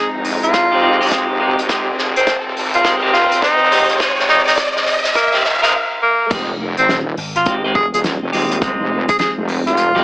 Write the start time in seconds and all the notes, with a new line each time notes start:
Already playing: C3 F3 G#3 C4 D#4 F4, riser
0.15 F1
0.25 open hi-hat
0.43 F4, closed hi-hat
0.53 kick, snare, closed hi-hat
0.72 F2 G#3 C4 D#4 G4
0.82 G#3 C4 D#4 G4
1.01 G#3 C4 D#4 G4, closed hi-hat
1.03 closed hi-hat
1.06 closed hi-hat
1.08 closed hi-hat
1.10 G#3, closed hi-hat
1.11 C4 D#4 G4, kick, snare, closed hi-hat
1.30 F1
1.40 G#3 C4 D#4 G4
1.59 G#1, closed hi-hat
1.69 F1 G#3 C4 D#4 G4, kick, snare, closed hi-hat
1.98 snare
2.16 G#1 C4, closed hi-hat
2.27 D#1, kick, snare, closed hi-hat
2.56 G#1, open hi-hat
2.74 F4, closed hi-hat
2.84 G#1 G#3 C4 D#4 G4, kick, snare, closed hi-hat
3.02 G#3 C4 D#4 G4
3.13 F1 F4, snare
3.32 D#1, closed hi-hat
3.42 D#4, kick, snare, closed hi-hat
3.61 F1
3.71 D#1 G#3 C4 D#4 G4, snare, open hi-hat
3.90 closed hi-hat
3.99 G#3 C4 D#4 F4, kick, snare, closed hi-hat
4.19 F1, snare
4.29 D#4, snare
4.47 D#4, snare, closed hi-hat
4.54 kick, snare, closed hi-hat
4.58 closed hi-hat
4.64 closed hi-hat
4.76 snare
4.86 snare, open hi-hat
5.05 snare, closed hi-hat
5.15 A#3, kick, snare, closed hi-hat
5.33 D#1 G#3 C4 D#4 G4, snare
5.44 snare
5.62 G#3 C4 D#4 A#4, snare, closed hi-hat
6.02 A#3
6.30 F1 G#3 C4 D#4 G4, kick, closed hi-hat, crash, impact
6.35 closed hi-hat
6.77 G#1 C4, closed hi-hat
6.88 D#1, snare, closed hi-hat
7.17 G#1, open hi-hat
7.36 F4, cross-stick, closed hi-hat
7.46 G#1 G#3 C4 D#4 G4, kick, closed hi-hat
7.64 G#3 C4 D#4 G4
7.75 F1 G#4, kick
7.93 D#1 G#4, closed hi-hat
8.04 snare, closed hi-hat
8.22 F1
8.33 D#1 G#3 C4 D#4 G4, open hi-hat
8.51 closed hi-hat
8.61 G#3 C4 D#4 F4, kick, closed hi-hat
8.80 F1
9.09 G#4, kick, closed hi-hat
9.19 G#4, snare, closed hi-hat
9.38 F1
9.48 open hi-hat
9.67 F4, cross-stick, closed hi-hat
9.77 closed hi-hat
9.95 F2 G#3 C4 D#4 G4, cross-stick